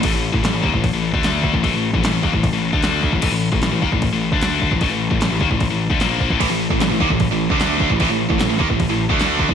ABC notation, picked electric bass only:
X:1
M:4/4
L:1/16
Q:1/4=151
K:Ddor
V:1 name="Picked electric bass" clef=bass
A,,, A,,,2 A,,, A,,, A,,, ^D,, A,,,2 A,,,2 =D,,4 A,,, | A,,, A,,,2 A,,, A,,, A,,, ^D,, A,,,2 A,,,2 =D,,4 A,,, | A,,, A,,,2 A,,, A,,, A,,, ^D,, A,,,2 A,,,2 =D,,4 A,,, | A,,, A,,,2 A,,, A,,, A,,, ^D,, A,,,2 A,,,2 =D,, _B,,,3 A,,, |
A,,, A,,,2 A,,, A,,, A,,, ^D,, A,,,2 A,,,2 =D,,4 A,,, | A,,, A,,,2 A,,, A,,, A,,, ^D,, A,,,2 A,,,2 =D,,4 A,,, |]